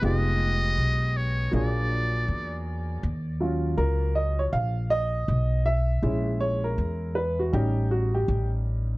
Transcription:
0.02 upright bass F1, upright piano G#3 B3 D#4 F4 G4, muted trumpet D#5
0.78 upright bass B1
1.17 muted trumpet C#5
1.51 upright bass A#1, upright piano F#3 A#3 D4 F4 G#4, muted trumpet D5
2.28 upright bass E2
3.03 upright bass D#2
3.40 upright piano F#3 C#4 F4
3.78 upright bass C#2, upright piano A#4
4.16 upright piano D#5
4.39 upright piano C#5
4.53 upright bass A#1, upright piano F5
4.90 upright piano D#5
5.28 upright bass B1
5.66 upright piano E5
6.02 upright bass A#1, upright piano G#3 C#4 E4
6.41 upright piano C#5
6.64 upright piano A#4
6.78 upright bass E2
7.15 upright piano B4
7.39 upright piano F#4
7.52 upright bass A1, upright piano G3 C#4 D#4 G4
7.91 upright piano F#4
8.14 upright piano G4
8.28 upright bass A1

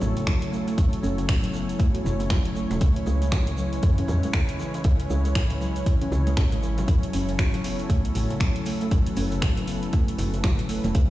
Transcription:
Already playing: analog synth pad F#3 C#4 E4 A4 C#5
0.01 fm bass A1, low conga, shaker
0.17 kalimba C#3, closed hi-hat, shaker
0.27 kalimba F#3, finger snap, kick, closed hi-hat, high conga, shaker
0.42 closed hi-hat
0.52 kalimba A3, shaker
0.67 kalimba A3, closed hi-hat, shaker
0.78 fm bass F#1, kalimba F#3, kick, closed hi-hat, shaker
0.93 closed hi-hat
1.03 fm bass F#1, kalimba C#4, shaker
1.18 kalimba C#3, closed hi-hat, shaker
1.29 finger snap, kick, closed hi-hat, low conga, shaker
1.44 kalimba F#3, closed hi-hat
1.54 kalimba B3, shaker
1.69 closed hi-hat, shaker
1.79 kalimba A3, kick, closed hi-hat, shaker
1.94 kalimba F#4, closed hi-hat
2.05 fm bass F#1, high conga, shaker
2.20 kalimba C#3, closed hi-hat, shaker
2.30 kalimba F#3, finger snap, kick, closed hi-hat, high conga, low conga, shaker
2.45 closed hi-hat
2.55 kalimba A3, shaker
2.71 fm bass E1, kalimba A3, closed hi-hat, high conga, shaker
2.81 fm bass C#2, kalimba C#3, analog synth pad G#3 B4, kick, closed hi-hat, shaker
2.96 closed hi-hat
3.07 fm bass C#2, kalimba G#3, shaker
3.22 kalimba G#3, closed hi-hat, shaker
3.32 finger snap, kick, closed hi-hat, low conga, shaker
3.47 kalimba C#3, closed hi-hat
3.57 kalimba F#3, shaker
3.73 closed hi-hat, shaker
3.83 fm bass F#2, kalimba E3, kick, closed hi-hat, shaker
3.98 kalimba C#4, closed hi-hat
4.08 fm bass E2, low conga, shaker
4.23 kalimba G#3, closed hi-hat, shaker
4.33 kalimba C#3, finger snap, kick, closed hi-hat, high conga, shaker
4.49 closed hi-hat
4.59 kalimba E3, shaker
4.74 kalimba E3, closed hi-hat, shaker
4.84 fm bass C#2, kalimba C#3, kick, closed hi-hat, shaker
5.00 closed hi-hat
5.10 fm bass C#2, kalimba G#3, shaker
5.25 kalimba G#3, closed hi-hat, shaker
5.35 finger snap, kick, closed hi-hat, low conga, shaker
5.50 kalimba C#3, closed hi-hat
5.61 kalimba F#3, shaker
5.76 closed hi-hat, shaker
5.86 kalimba E3, kick, closed hi-hat, shaker
6.02 kalimba C#4, closed hi-hat
6.12 fm bass C#2, high conga, shaker
6.27 kalimba G#3, closed hi-hat, shaker
6.37 fm bass G#1, kalimba C#4, finger snap, kick, closed hi-hat, high conga, low conga, shaker
6.52 kalimba G#3, closed hi-hat
6.63 kalimba E3, shaker
6.78 kalimba F#3, closed hi-hat, high conga, shaker
6.88 fm bass F#1, kalimba F#3, analog synth pad F#3 A4, kick, closed hi-hat, shaker
7.03 closed hi-hat
7.13 fm bass F#1, kalimba C#4, open hi-hat, shaker
7.28 kalimba C#3, closed hi-hat, shaker
7.39 kalimba F#4, finger snap, kick, closed hi-hat, low conga, shaker
7.54 kalimba F#3, closed hi-hat
7.64 kalimba B3, open hi-hat, shaker
7.79 closed hi-hat, shaker
7.90 fm bass B1, kalimba A3, kick, closed hi-hat, shaker
8.05 closed hi-hat
8.15 fm bass A1, open hi-hat, low conga, shaker
8.30 kalimba C#3, closed hi-hat, shaker
8.40 kalimba F#3, finger snap, kick, closed hi-hat, high conga, shaker
8.56 closed hi-hat
8.66 kalimba A3, open hi-hat, shaker
8.81 kalimba A3, closed hi-hat, shaker
8.91 fm bass F#1, kalimba F#3, analog synth pad B4, kick, closed hi-hat, shaker
9.06 closed hi-hat
9.16 fm bass F#1, kalimba C#4, open hi-hat, shaker
9.32 kalimba C#3, closed hi-hat, shaker
9.42 kalimba F#4, finger snap, kick, closed hi-hat, low conga, shaker
9.57 kalimba F#3, closed hi-hat
9.68 kalimba B3, open hi-hat, shaker
9.83 closed hi-hat, shaker
9.93 kalimba A3, kick, closed hi-hat, shaker
10.08 closed hi-hat
10.18 fm bass F#1, open hi-hat, high conga, shaker
10.34 kalimba C#3, closed hi-hat, shaker
10.44 kalimba F#3, finger snap, kick, closed hi-hat, high conga, low conga, shaker
10.59 closed hi-hat
10.69 kalimba A3, open hi-hat, shaker
10.84 fm bass E1, kalimba A3, closed hi-hat, high conga, shaker
10.95 fm bass C#2, kalimba C#3, analog synth pad G#3 C#4 E4 C#5, kick, closed hi-hat, shaker

